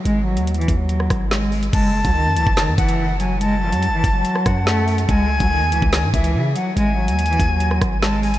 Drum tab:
CC |------------------------------------------------|x-----------------------------------------------|------------------------------------------------|------------------------------------------------|
HH |x--------x--x-x-x-x-----x-----x-----------o--x--|x--------x--------x-----x-----x--x--------x-----|x--------x--x-----x-----x-----x-----------o--x--|x--------x--------x-----x-----x--x--------x-----|
SD |---------------------------r--r-----o-----------|------------------------o-----------------------|---------------------------r--r-----o-----------|------------------------o-----------------------|
BD |------------------o-----------o-----------------|o--------o-----------o--------o-----------------|------------------o-----------o-----------------|o--------o-----------o--------o-----------------|

CC |------------------------------------------------|
HH |x--------x--x-x-x-x-----x-----x-----------o--x--|
SD |---------------------------r--r-----o-----------|
BD |------------------o-----------o-----------------|